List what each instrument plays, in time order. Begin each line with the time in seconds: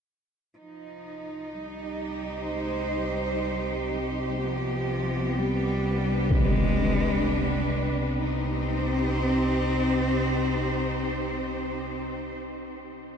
0.58 synth drone C2 C3, cello F3, cello section D#4
1.54 cello G3
1.82 cello section G4
2.32 cello section C5
2.50 cello G#3
2.97 cello G3
4.41 cello F3, cello section B3
5.33 cello section B4
5.38 cello G3
5.84 cello section D4
6.30 cello G#3, impact
8.20 synth drone C2 C3, cello C4, cello section D#4
8.36 cello section G4
8.51 cello section C5